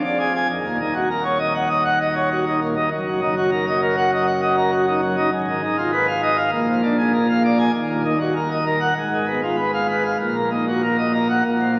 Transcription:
Already playing: F1 F2
0.04 D5
0.19 G#4
0.35 G#5
0.50 D#1 D#2
0.65 A#2
0.80 D#4
0.95 F#4
1.10 A#4
1.24 C#5
1.39 D#5
1.55 F#5
1.69 D#5
1.85 F#5
2.01 D#5
2.15 C#5
2.31 F#4
2.47 D#4
2.61 A#2
2.76 D#4
2.91 F#1 F#2
3.07 F#3
3.21 D#4
3.37 F#4
3.51 A#4
3.67 D#5
3.82 A#4
3.97 F#5
4.12 D#5
4.27 F#5
4.42 D#5
4.57 A#4
4.72 F#4
4.87 D#4
5.01 F#3
5.17 D#4
5.32 G#1 G#2
5.48 D#3
5.63 D#4
5.77 F4
5.92 B4
6.07 F5
6.22 D#5
6.37 F5
6.51 A#1 A#2
6.67 F3
6.82 D4
6.98 G#4
7.13 A#4
7.29 F5
7.44 D5
7.59 G#5
7.74 D#1 D#2
7.89 A#2
8.05 D#4
8.20 F#4
8.36 A#4
8.51 D#5
8.66 A#4
8.80 F#5
8.96 G#1 G#2
9.12 G#3
9.26 B3
9.43 F4
9.57 B4
9.73 F5
9.89 B4
10.05 F5
10.19 A#1 A#2
10.36 A#3
10.51 D#4
10.68 F#4
10.83 A#4
10.98 D#5
11.13 A#4
11.30 F#5
11.45 A#1 A#2
11.61 F3

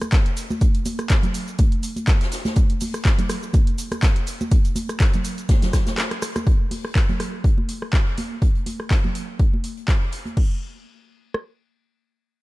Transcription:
0.02 cross-stick, closed hi-hat, high conga, shaker
0.11 kick, snare, clap, closed hi-hat, shaker
0.26 closed hi-hat
0.36 closed hi-hat, open hi-hat, shaker
0.50 high conga, shaker
0.61 kick, closed hi-hat, shaker
0.75 closed hi-hat
0.86 closed hi-hat, open hi-hat, high conga, shaker
0.99 cross-stick, closed hi-hat, shaker
1.10 kick, snare, clap, closed hi-hat, shaker
1.23 closed hi-hat, high conga, low conga, shaker
1.34 closed hi-hat, open hi-hat, shaker
1.48 shaker
1.59 kick, closed hi-hat, high conga, shaker
1.72 closed hi-hat
1.83 closed hi-hat, open hi-hat, shaker
1.96 closed hi-hat, high conga, shaker
2.07 kick, snare, clap, closed hi-hat, shaker
2.21 snare, closed hi-hat
2.31 snare, closed hi-hat, open hi-hat, shaker
2.45 snare, closed hi-hat, high conga, shaker
2.56 kick, closed hi-hat, shaker
2.70 closed hi-hat
2.80 open hi-hat, high conga, shaker
2.94 cross-stick, closed hi-hat, shaker
3.05 kick, snare, clap, closed hi-hat, shaker
3.18 closed hi-hat, high conga, low conga, shaker
3.29 cross-stick, closed hi-hat, open hi-hat, shaker
3.43 shaker
3.53 kick, closed hi-hat, high conga, shaker
3.67 closed hi-hat
3.78 closed hi-hat, open hi-hat, shaker
3.91 cross-stick, closed hi-hat, high conga, shaker
4.02 kick, snare, clap, closed hi-hat, shaker
4.16 closed hi-hat
4.27 closed hi-hat, open hi-hat, shaker
4.41 high conga, shaker
4.51 kick, closed hi-hat, shaker
4.65 closed hi-hat, shaker
4.76 closed hi-hat, open hi-hat, high conga, shaker
4.89 cross-stick, closed hi-hat, shaker
5.00 kick, snare, clap, closed hi-hat, shaker
5.14 closed hi-hat, high conga, low conga, shaker
5.24 closed hi-hat, open hi-hat, shaker
5.38 closed hi-hat, shaker
5.49 kick, snare, closed hi-hat, high conga, shaker
5.62 snare, closed hi-hat, low conga, shaker
5.73 kick, cross-stick, snare, closed hi-hat, open hi-hat, shaker
5.86 snare, closed hi-hat, high conga, shaker
5.97 cross-stick, snare, clap, closed hi-hat, open hi-hat, shaker
6.11 cross-stick, closed hi-hat
6.22 cross-stick, closed hi-hat, open hi-hat, shaker
6.36 cross-stick, closed hi-hat, high conga, shaker
6.47 kick, closed hi-hat
6.71 open hi-hat, high conga
6.85 cross-stick
6.95 kick, snare, clap, closed hi-hat
7.09 closed hi-hat, high conga, low conga
7.20 cross-stick, closed hi-hat, open hi-hat
7.44 kick, closed hi-hat
7.58 high conga
7.69 closed hi-hat, open hi-hat
7.82 cross-stick
7.93 kick, snare, clap, closed hi-hat
8.18 closed hi-hat, open hi-hat, high conga
8.42 kick, closed hi-hat
8.55 closed hi-hat
8.66 closed hi-hat, open hi-hat, high conga
8.80 cross-stick
8.91 kick, snare, clap, closed hi-hat
9.04 high conga, low conga
9.15 closed hi-hat, open hi-hat
9.39 kick, closed hi-hat
9.53 high conga
9.64 closed hi-hat, open hi-hat
9.77 closed hi-hat
9.87 kick, snare, clap, closed hi-hat
10.12 closed hi-hat, open hi-hat
10.25 closed hi-hat, high conga
10.37 kick, crash
11.34 cross-stick

